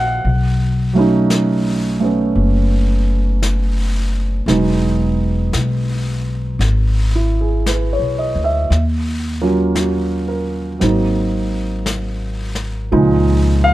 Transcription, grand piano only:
0, 0, Header, 1, 2, 480
1, 0, Start_track
1, 0, Tempo, 1056338
1, 110, Time_signature, 4, 2, 24, 8
1, 6242, End_track
2, 0, Start_track
2, 0, Title_t, "Grand piano"
2, 0, Program_c, 0, 0
2, 0, Control_c, 0, 64, 127
2, 0, Note_on_c, 0, 53, 41
2, 0, Note_on_c, 0, 56, 42
2, 0, Note_on_c, 0, 58, 39
2, 0, Note_on_c, 0, 61, 49
2, 0, Note_on_c, 0, 73, 57
2, 0, Note_on_c, 0, 76, 57
2, 0, Note_on_c, 0, 77, 95
2, 0, Note_on_c, 0, 78, 74
2, 99, Note_off_c, 0, 53, 0
2, 109, Note_off_c, 0, 56, 0
2, 109, Note_off_c, 0, 58, 0
2, 115, Control_c, 0, 64, 0
2, 117, Note_off_c, 0, 76, 0
2, 118, Note_off_c, 0, 73, 0
2, 119, Note_off_c, 0, 77, 0
2, 123, Note_off_c, 0, 61, 0
2, 184, Control_c, 0, 64, 127
2, 424, Note_on_c, 0, 54, 49
2, 427, Note_off_c, 0, 78, 0
2, 432, Note_on_c, 0, 57, 38
2, 442, Note_on_c, 0, 61, 43
2, 449, Note_on_c, 0, 63, 52
2, 902, Note_off_c, 0, 57, 0
2, 909, Note_on_c, 0, 57, 36
2, 916, Note_off_c, 0, 61, 0
2, 918, Note_on_c, 0, 59, 32
2, 923, Note_on_c, 0, 61, 38
2, 2026, Note_off_c, 0, 54, 0
2, 2031, Note_off_c, 0, 59, 0
2, 2032, Note_off_c, 0, 63, 0
2, 2033, Note_on_c, 0, 54, 36
2, 2035, Note_off_c, 0, 57, 0
2, 2035, Note_on_c, 0, 56, 37
2, 2038, Note_on_c, 0, 59, 35
2, 2038, Note_on_c, 0, 63, 42
2, 2041, Control_c, 0, 64, 0
2, 2042, Note_off_c, 0, 61, 0
2, 2118, Control_c, 0, 64, 127
2, 3251, Note_on_c, 0, 64, 36
2, 3367, Note_on_c, 0, 68, 36
2, 3394, Note_off_c, 0, 64, 0
2, 3485, Note_on_c, 0, 71, 32
2, 3531, Note_off_c, 0, 68, 0
2, 3603, Note_on_c, 0, 73, 42
2, 3708, Note_off_c, 0, 71, 0
2, 3719, Note_on_c, 0, 75, 45
2, 3807, Note_off_c, 0, 73, 0
2, 3836, Note_on_c, 0, 76, 43
2, 3867, Note_off_c, 0, 75, 0
2, 3958, Note_off_c, 0, 54, 0
2, 3959, Note_off_c, 0, 56, 0
2, 3960, Note_off_c, 0, 59, 0
2, 3961, Note_off_c, 0, 63, 0
2, 3965, Control_c, 0, 64, 0
2, 4005, Note_off_c, 0, 76, 0
2, 4059, Control_c, 0, 64, 127
2, 4278, Note_on_c, 0, 54, 44
2, 4278, Note_on_c, 0, 58, 36
2, 4280, Note_on_c, 0, 61, 38
2, 4282, Note_on_c, 0, 65, 42
2, 4439, Note_on_c, 0, 66, 36
2, 4673, Note_on_c, 0, 70, 40
2, 4821, Note_off_c, 0, 66, 0
2, 4896, Note_off_c, 0, 54, 0
2, 4903, Note_off_c, 0, 58, 0
2, 4903, Note_on_c, 0, 54, 39
2, 4910, Note_on_c, 0, 58, 35
2, 4914, Note_on_c, 0, 60, 33
2, 4917, Note_off_c, 0, 61, 0
2, 4917, Note_off_c, 0, 65, 0
2, 4922, Control_c, 0, 64, 0
2, 4924, Note_on_c, 0, 63, 42
2, 5004, Control_c, 0, 64, 127
2, 5015, Note_off_c, 0, 70, 0
2, 5865, Note_off_c, 0, 54, 0
2, 5868, Note_off_c, 0, 58, 0
2, 5869, Note_off_c, 0, 63, 0
2, 5870, Note_off_c, 0, 60, 0
2, 5870, Note_on_c, 0, 53, 48
2, 5871, Note_on_c, 0, 56, 49
2, 5875, Note_on_c, 0, 46, 48
2, 5876, Note_on_c, 0, 63, 56
2, 5877, Control_c, 0, 64, 0
2, 5957, Control_c, 0, 64, 127
2, 6198, Note_on_c, 0, 77, 83
2, 6242, Note_off_c, 0, 46, 0
2, 6242, Note_off_c, 0, 53, 0
2, 6242, Note_off_c, 0, 56, 0
2, 6242, Note_off_c, 0, 63, 0
2, 6242, Note_off_c, 0, 77, 0
2, 6242, End_track
0, 0, End_of_file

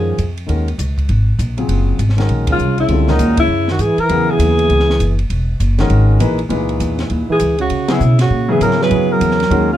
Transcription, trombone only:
0, 0, Header, 1, 2, 480
1, 0, Start_track
1, 0, Tempo, 300752
1, 782, Time_signature, 4, 2, 24, 8
1, 15593, End_track
2, 0, Start_track
2, 0, Title_t, "Trombone"
2, 0, Program_c, 0, 57
2, 0, Note_on_c, 0, 53, 64
2, 552, Note_off_c, 0, 53, 0
2, 3981, Note_on_c, 0, 49, 69
2, 4417, Note_off_c, 0, 49, 0
2, 4462, Note_on_c, 0, 49, 57
2, 4960, Note_on_c, 0, 46, 64
2, 4984, Note_off_c, 0, 49, 0
2, 5419, Note_off_c, 0, 46, 0
2, 5432, Note_on_c, 0, 49, 64
2, 5862, Note_off_c, 0, 49, 0
2, 5909, Note_on_c, 0, 51, 71
2, 6107, Note_on_c, 0, 52, 86
2, 6131, Note_off_c, 0, 51, 0
2, 6393, Note_off_c, 0, 52, 0
2, 6393, Note_on_c, 0, 52, 83
2, 6872, Note_off_c, 0, 52, 0
2, 6872, Note_on_c, 0, 52, 71
2, 8294, Note_off_c, 0, 52, 0
2, 11645, Note_on_c, 0, 52, 72
2, 12088, Note_off_c, 0, 52, 0
2, 12120, Note_on_c, 0, 49, 68
2, 12614, Note_off_c, 0, 49, 0
2, 12614, Note_on_c, 0, 49, 70
2, 13086, Note_off_c, 0, 49, 0
2, 13101, Note_on_c, 0, 49, 67
2, 13537, Note_off_c, 0, 49, 0
2, 13580, Note_on_c, 0, 52, 72
2, 13738, Note_off_c, 0, 52, 0
2, 13790, Note_on_c, 0, 54, 89
2, 14045, Note_off_c, 0, 54, 0
2, 14068, Note_on_c, 0, 54, 77
2, 14539, Note_off_c, 0, 54, 0
2, 14539, Note_on_c, 0, 54, 80
2, 15490, Note_off_c, 0, 54, 0
2, 15526, Note_on_c, 0, 49, 75
2, 15593, Note_off_c, 0, 49, 0
2, 15593, End_track
0, 0, End_of_file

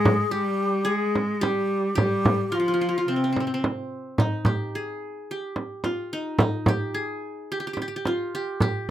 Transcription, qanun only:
0, 0, Header, 1, 2, 480
1, 0, Start_track
1, 0, Tempo, 551978
1, 1721, Time_signature, 4, 2, 24, 8
1, 7741, End_track
2, 0, Start_track
2, 0, Title_t, "Qanun"
2, 0, Program_c, 0, 107
2, 0, Note_on_c, 0, 68, 92
2, 0, Note_on_c, 0, 71, 68
2, 207, Note_off_c, 0, 71, 0
2, 272, Note_on_c, 0, 67, 81
2, 324, Note_off_c, 0, 68, 0
2, 736, Note_on_c, 0, 68, 94
2, 788, Note_off_c, 0, 67, 0
2, 1228, Note_on_c, 0, 67, 91
2, 1281, Note_off_c, 0, 68, 0
2, 1695, Note_off_c, 0, 67, 0
2, 1699, Note_on_c, 0, 67, 82
2, 2190, Note_on_c, 0, 65, 79
2, 2254, Note_off_c, 0, 65, 0
2, 2257, Note_on_c, 0, 65, 55
2, 2327, Note_off_c, 0, 65, 0
2, 2330, Note_on_c, 0, 65, 58
2, 2376, Note_off_c, 0, 65, 0
2, 2380, Note_on_c, 0, 65, 55
2, 2444, Note_off_c, 0, 65, 0
2, 2447, Note_on_c, 0, 65, 68
2, 2507, Note_off_c, 0, 65, 0
2, 2510, Note_on_c, 0, 65, 59
2, 2585, Note_off_c, 0, 65, 0
2, 2589, Note_on_c, 0, 65, 65
2, 2679, Note_on_c, 0, 60, 65
2, 2746, Note_off_c, 0, 60, 0
2, 2749, Note_on_c, 0, 60, 44
2, 2790, Note_off_c, 0, 67, 0
2, 2813, Note_off_c, 0, 60, 0
2, 2816, Note_on_c, 0, 60, 51
2, 2888, Note_off_c, 0, 60, 0
2, 2891, Note_on_c, 0, 60, 50
2, 2956, Note_off_c, 0, 60, 0
2, 2959, Note_on_c, 0, 60, 53
2, 3013, Note_off_c, 0, 60, 0
2, 3016, Note_on_c, 0, 60, 46
2, 3074, Note_off_c, 0, 60, 0
2, 3077, Note_on_c, 0, 60, 59
2, 3649, Note_on_c, 0, 63, 71
2, 3759, Note_off_c, 0, 65, 0
2, 3880, Note_on_c, 0, 67, 62
2, 4132, Note_on_c, 0, 68, 68
2, 4185, Note_off_c, 0, 67, 0
2, 4469, Note_off_c, 0, 60, 0
2, 4617, Note_on_c, 0, 67, 71
2, 4670, Note_off_c, 0, 68, 0
2, 4903, Note_off_c, 0, 63, 0
2, 5080, Note_on_c, 0, 65, 75
2, 5330, Note_on_c, 0, 63, 76
2, 5563, Note_off_c, 0, 63, 0
2, 5566, Note_on_c, 0, 63, 67
2, 5709, Note_off_c, 0, 67, 0
2, 5812, Note_on_c, 0, 67, 74
2, 6039, Note_on_c, 0, 68, 74
2, 6091, Note_off_c, 0, 67, 0
2, 6249, Note_off_c, 0, 65, 0
2, 6536, Note_on_c, 0, 67, 78
2, 6588, Note_off_c, 0, 68, 0
2, 6605, Note_off_c, 0, 67, 0
2, 6609, Note_on_c, 0, 67, 60
2, 6666, Note_off_c, 0, 67, 0
2, 6670, Note_on_c, 0, 67, 67
2, 6722, Note_off_c, 0, 67, 0
2, 6725, Note_on_c, 0, 67, 56
2, 6794, Note_off_c, 0, 67, 0
2, 6797, Note_on_c, 0, 67, 67
2, 6820, Note_off_c, 0, 63, 0
2, 6847, Note_off_c, 0, 67, 0
2, 6851, Note_on_c, 0, 67, 54
2, 6919, Note_off_c, 0, 67, 0
2, 6923, Note_on_c, 0, 67, 68
2, 7016, Note_on_c, 0, 65, 78
2, 7255, Note_off_c, 0, 67, 0
2, 7258, Note_on_c, 0, 67, 82
2, 7491, Note_off_c, 0, 67, 0
2, 7494, Note_on_c, 0, 67, 82
2, 7741, Note_off_c, 0, 65, 0
2, 7741, Note_off_c, 0, 67, 0
2, 7741, End_track
0, 0, End_of_file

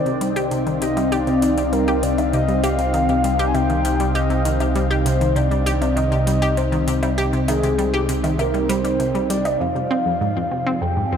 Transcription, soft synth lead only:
0, 0, Header, 1, 2, 480
1, 0, Start_track
1, 0, Key_signature, -3, "minor"
1, 0, Tempo, 606061
1, 1846, Time_signature, 4, 2, 24, 8
1, 8848, End_track
2, 0, Start_track
2, 0, Title_t, "Soft synth lead"
2, 0, Program_c, 0, 80
2, 0, Note_on_c, 0, 74, 106
2, 374, Note_off_c, 0, 74, 0
2, 649, Note_on_c, 0, 75, 84
2, 889, Note_on_c, 0, 74, 97
2, 901, Note_off_c, 0, 75, 0
2, 1368, Note_on_c, 0, 70, 85
2, 1380, Note_off_c, 0, 74, 0
2, 1609, Note_on_c, 0, 74, 89
2, 1620, Note_off_c, 0, 70, 0
2, 1844, Note_off_c, 0, 74, 0
2, 1849, Note_on_c, 0, 75, 104
2, 2071, Note_off_c, 0, 75, 0
2, 2088, Note_on_c, 0, 77, 110
2, 2720, Note_off_c, 0, 77, 0
2, 2753, Note_on_c, 0, 80, 78
2, 2809, Note_on_c, 0, 79, 111
2, 2821, Note_off_c, 0, 80, 0
2, 3282, Note_off_c, 0, 79, 0
2, 3287, Note_on_c, 0, 75, 91
2, 3621, Note_off_c, 0, 75, 0
2, 4006, Note_on_c, 0, 72, 87
2, 4245, Note_on_c, 0, 74, 99
2, 4257, Note_off_c, 0, 72, 0
2, 4723, Note_on_c, 0, 75, 117
2, 4735, Note_off_c, 0, 74, 0
2, 5207, Note_on_c, 0, 72, 92
2, 5218, Note_off_c, 0, 75, 0
2, 5566, Note_off_c, 0, 72, 0
2, 5929, Note_on_c, 0, 68, 112
2, 6376, Note_off_c, 0, 68, 0
2, 6647, Note_on_c, 0, 70, 101
2, 6887, Note_on_c, 0, 72, 116
2, 6899, Note_off_c, 0, 70, 0
2, 7367, Note_off_c, 0, 72, 0
2, 7370, Note_on_c, 0, 74, 93
2, 7609, Note_on_c, 0, 77, 113
2, 7620, Note_off_c, 0, 74, 0
2, 8566, Note_on_c, 0, 79, 111
2, 8578, Note_off_c, 0, 77, 0
2, 8848, Note_off_c, 0, 79, 0
2, 8848, End_track
0, 0, End_of_file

